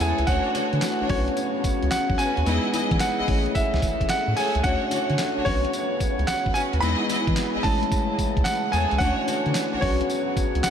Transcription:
Already playing: C#3 E3 G#3 A3 C#4 E4 C#5
0.00 E2 G#4 A4 C#5 G#5, closed hi-hat, tambourine
0.18 C#2, closed hi-hat
0.27 D2 D3 A3 C#4 D4 F#4 C#5 F#5, kick, closed hi-hat, tambourine
0.54 D3 D4 F#4 C#5, closed hi-hat, tambourine
0.73 D3, closed hi-hat
0.82 snare, clap, closed hi-hat, tambourine
1.00 B1 D4 F#4 C#5
1.09 B1 C#3 F#3 B3 C#4 F#4 A4 C#5, kick, open hi-hat
1.18 B4
1.28 closed hi-hat
1.37 closed hi-hat, tambourine
1.64 C#2, kick, closed hi-hat, tambourine
1.82 C#2, closed hi-hat
1.91 F#5, snare, clap, closed hi-hat, tambourine
2.10 B1, kick
2.18 C#4 F#4 B4 G#5, closed hi-hat, tambourine
2.37 D#2, closed hi-hat
2.45 E2 E3 G#3 B3 D#4 E4 G#4 B4 D#5, closed hi-hat, tambourine
2.73 E3 E4 G#4 D#5, closed hi-hat, tambourine
2.91 E3, kick, closed hi-hat
3.00 F#5, snare, clap, closed hi-hat, tambourine
3.18 A1 E4 G#4 D#5
3.27 A1 C#3 A3 C#4 E4 G#4 C#5, kick, open hi-hat
3.46 closed hi-hat
3.55 E5, kick, closed hi-hat, tambourine
3.74 C#2, snare
3.82 A1, kick, closed hi-hat, tambourine
4.01 A1, kick, closed hi-hat
4.09 F#5, snare, clap, closed hi-hat, tambourine
4.28 A2
4.36 G#4 A4 C#5 G#5, open hi-hat, tambourine
4.55 C#2, closed hi-hat
4.63 D2 D3 A3 C#4 D4 F#4 C#5 F#5, kick, closed hi-hat, tambourine
4.91 D3 D4 F#4 C#5, closed hi-hat, tambourine
5.10 D3, closed hi-hat
5.19 snare, clap, closed hi-hat, tambourine
5.37 B1 D4 F#4 C#5
5.45 B1 C#3 F#3 B3 C#4 F#4 B4 C#5, kick, open hi-hat
5.65 closed hi-hat
5.73 closed hi-hat, tambourine
6.00 C#2, kick, closed hi-hat, tambourine
6.19 C#2, closed hi-hat
6.27 F#5, snare, clap, closed hi-hat, tambourine
6.46 B1, kick
6.54 C#4 F#4 B4 G#5, closed hi-hat, tambourine
6.73 D#2, closed hi-hat
6.80 E2 E3 G#3 B3 D#4 E4 G#4 B4 D#5 B5, closed hi-hat, tambourine
7.09 E3 E4 G#4 D#5, closed hi-hat, tambourine
7.27 E3, kick, closed hi-hat
7.37 snare, clap, closed hi-hat, tambourine
7.55 A1 E4 G#4 D#5
7.63 A1 C#3 E3 G#3 A3 C#4 E4 C#5 A5, kick, open hi-hat
7.83 closed hi-hat
7.92 kick, closed hi-hat, tambourine
8.19 C#2, kick, closed hi-hat, tambourine
8.37 C#2, kick, closed hi-hat
8.44 F#5, snare, clap, closed hi-hat, tambourine
8.72 E2 G#4 A4 C#5 G#5, closed hi-hat, tambourine
8.91 C#2, closed hi-hat
8.98 D2 D3 A3 C#4 D4 F#4 C#5 F#5, kick, closed hi-hat, tambourine
9.27 D3 D4 F#4 C#5, closed hi-hat, tambourine
9.46 D3, closed hi-hat
9.55 snare, clap, closed hi-hat, tambourine
9.72 B1 D4 F#4 C#5
9.81 B1 C#3 F#3 B3 C#4 F#4 B4 C#5, kick, open hi-hat
10.01 closed hi-hat
10.10 closed hi-hat, tambourine
10.37 C#2, kick, closed hi-hat, tambourine
10.55 C#2, closed hi-hat
10.63 F#5, snare, clap, closed hi-hat, tambourine

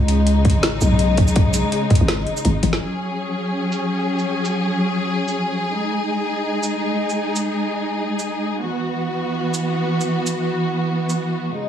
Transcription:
Already playing: C#2 C#3 G#3 D#4
0.08 closed hi-hat
0.27 closed hi-hat
0.45 kick, closed hi-hat, mid tom
0.50 closed hi-hat
0.55 G#1
0.63 snare, closed hi-hat
0.81 B1, shaker
0.91 mid tom
0.99 closed hi-hat
1.17 kick, closed hi-hat
1.28 shaker
1.36 kick, closed hi-hat
1.46 mid tom
1.54 closed hi-hat, shaker
1.72 closed hi-hat
1.90 kick, closed hi-hat, mid tom
1.95 closed hi-hat
2.01 G#1
2.08 snare, closed hi-hat
2.27 closed hi-hat
2.37 shaker
2.45 G#1, closed hi-hat, mid tom
2.63 G#1, closed hi-hat, high tom
2.73 snare
2.81 F#3 C#4 G#4
3.72 shaker
4.19 shaker
4.45 shaker
5.28 shaker
5.72 G#3 D#4
6.63 shaker
7.10 shaker
7.36 shaker
8.19 shaker
8.63 E3 B3 F#4
9.54 shaker
10.01 shaker
10.27 shaker
11.10 shaker
11.53 C#3 G#3 D#4

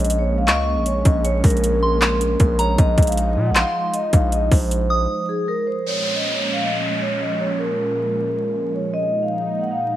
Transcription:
Already playing: A#1 G#3 A#3 C#4
0.00 D#5
0.04 closed hi-hat
0.10 closed hi-hat
0.19 C#5
0.38 F5
0.47 C#2 D#5 C#6, clap, closed hi-hat
0.76 A#1
0.86 C#5, closed hi-hat
1.05 A#1 D#5, kick, closed hi-hat
1.25 C#5, closed hi-hat
1.44 A#1 A#4, kick, closed hi-hat, open hi-hat
1.50 closed hi-hat
1.57 closed hi-hat
1.64 closed hi-hat
1.82 C6
2.02 clap, closed hi-hat
2.21 closed hi-hat
2.40 A#1, kick, closed hi-hat
2.59 C#5 A#5, closed hi-hat
2.78 A#1 F3 D#4 D#5, kick, closed hi-hat
2.98 A#1, kick, closed hi-hat
3.03 closed hi-hat
3.07 F5, closed hi-hat
3.12 closed hi-hat
3.17 closed hi-hat
3.27 D#5
3.36 A#2
3.46 F#5
3.51 A#1
3.55 F5 C6, clap, closed hi-hat
3.93 D#5, closed hi-hat
4.13 A#1 F5, kick, closed hi-hat
4.32 D#5, closed hi-hat
4.51 A#1 C5, kick, open hi-hat
4.71 closed hi-hat
4.90 D#6
5.29 G#4
5.48 A#4
5.67 C5
5.86 A#2 F3 G#3 C#4 C#5, downlifter
6.15 D#5
6.34 C#5
6.53 F5
6.63 D#5
7.01 C#5
7.20 D#5
7.40 C#5
7.59 A#4
8.75 C#5
8.94 A#2 D#4 D#5
9.23 F5
9.42 D#5
9.61 F#5
9.71 F5

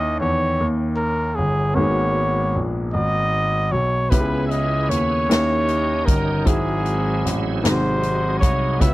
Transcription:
Already playing: D#2 D#3 C#4 D#4 E4 D#5 G5
0.20 E2 C#5
0.60 D#2
0.96 A#4
1.35 G1 G#4
1.74 G#1 G#2 A#3 B3 F#4 C#5
1.79 G#4
2.56 A#1
2.93 G#1 D#5
3.71 B1 C#5
4.10 C#2 C#3 B3 C#4 E4 G4 G#4 B4, kick, closed hi-hat
4.20 G#4
4.47 D#5 E5
4.51 closed hi-hat
4.89 D#2 C#5, closed hi-hat
5.29 D#2 D#3 C#4 D#4 E4 F#4 G4 D#5, snare, closed hi-hat
5.36 G4
5.68 closed hi-hat
6.05 G1 A#4, kick, closed hi-hat
6.45 G#1 G#2 F#3 C4 E4 F#4 G#4, kick, closed hi-hat
6.86 closed hi-hat
7.25 A1, closed hi-hat
7.62 G#1 G#2 C3 F#3 B3 D#4 F#4 G#4 C5, snare, closed hi-hat
7.68 C3
8.03 closed hi-hat
8.39 C2 C#5, kick, closed hi-hat
8.79 C#2 C#3 B3 C#4 E4 F#4 E5, kick, closed hi-hat
8.84 F4
8.91 F#4

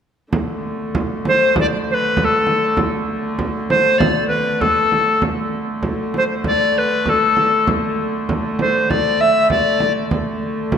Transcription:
0.33 D3 A3, frame drum
0.95 frame drum
1.25 C5, frame drum
1.56 D5, frame drum
1.90 B4 C5
2.17 B4, frame drum
2.24 A4
2.47 frame drum
2.77 frame drum
3.39 frame drum
3.70 C5, frame drum
3.98 D5, frame drum
4.28 B4, frame drum
4.61 A4, frame drum
4.92 frame drum
5.22 D3 A3, frame drum
5.83 frame drum
6.14 C5, frame drum
6.44 D5, frame drum
6.78 B4
7.06 A4, frame drum
7.37 frame drum
7.67 frame drum
8.29 frame drum
8.59 C5, frame drum
8.90 D5, frame drum
9.20 E5
9.50 D5, frame drum
9.80 frame drum
10.11 D3 A3, frame drum
10.72 frame drum

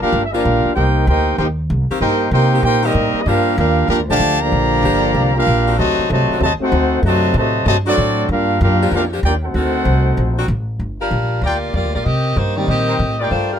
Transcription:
0.01 A#3 D4 F4 G4 A#4 F5, muted upright bass stroke
0.13 G1
0.26 E5
0.33 F3 A#3 D4 F4 G4 A#4 F5
0.45 A#1
0.65 muted upright bass stroke
0.75 C2 A#3 D#4 G4 A#4 C5 G5
1.07 D2 A#3 D#4 G4 A#4 C5 G5
1.38 D#2 A#3 D#4 G4 A#4 C5 G5
1.70 C2
1.90 D#3 A#3 C4 G4, muted upright bass stroke
2.00 G2 A#3 D#4 G4 A#4 C5 G5
2.31 C3 A#3 D#4 G4 A#4 C5 G5
2.52 D#3 A#3 C4 G4
2.62 A#2 A#3 D#4 G4 A#4 C5 G5
2.83 D#3 G3 A#3 C4 D#4 G4 A#4 D#5
2.95 A2
3.14 muted upright bass stroke
3.21 D#5
3.26 G2 F3 A#3 D4 F4 G4 A#4 F5
3.58 D#2 A#3 D4 F4 G4 A#4 F5
3.88 F2 A#3 D4 F4 G4 A#4 F5
3.99 D2
4.08 A#1 D3 F3 A3 A#3 D4 G4 D5 F5 A5
4.20 D2
4.40 D3 F3 A#3 G4 D5 F5 A#5
4.52 A#1
4.83 G1 F3 A#3 D4 G4
5.14 C2
5.35 A#3 D4 F4 G4 A#4 F5
5.47 A#1
5.66 D#3 C4 D4 F#4
5.78 D2 C3 F#3 A3 F#4 C5 D#5 A5
5.99 muted upright bass stroke
6.09 C2 C3 F#3 A3 F#4 C5 D#5 A5
6.29 D#3 C4 D4 F#4, muted upright bass stroke
6.39 D#2 C3 F#3 A3
6.44 F#4 C5 D#5 A5
6.59 A3 C4 D#4 F#4 A4 C5 F#5, muted upright bass stroke
6.72 D2
7.02 F#2 C3 D#3 F#3 A3 C4 D4 F#4
7.07 F#4 C5 D#5 A5
7.34 A2 C3 F#3 A3 F#4 A5
7.38 C5 D#5
7.66 G2 C3 F#3 A3 F#4 C5 D#5 A5
7.85 D#3 F#3 A3 C4 D4 F#4 A4 D5
7.89 C4
7.98 A2
8.29 G2 A#3 D4 F4 G4 A#4 F5
8.61 F#2 A#3 D4 F4 G4 A#4 F5
8.81 F3 A#3 D4 G4
8.92 F2 A#3 D4 F4
8.96 G4 A#4 F5
9.12 F3 A#3 D4 G4
9.23 D#2 A#3 D4 F4 G4 A#4 D5 G5
9.44 A3 C4 D#4 F#4 A4 C5 F#5
9.54 D2 D3 D#3 C4 F#4
9.85 C2
10.17 A#1
10.37 D#3 C4 D4 F#4
10.48 A1
10.79 G1
11.01 G3 D4 F4 A#4
11.11 A#1
11.42 D2 A#3 F4 G4 A#4 D5 G5
11.74 F2 A#3 F4 G4 D5
11.84 D2
11.95 A#1 A#3 F4 G4 D5
12.04 C3 C4 G4 A#4 D#5
12.36 G2 A#3 D#4 G4 C5
12.55 D#3 G3 A#3 C4 D#4 G4 D5
12.68 A#2 C4 G4 A#4 D#5
12.89 D#4 A#4 C5 G5
12.99 A2
13.20 A#3 D#4 F4 G4 A#4 D5 G5
13.31 G2 A3 D4 F4 C5
13.53 G3 D4 F4 A#4

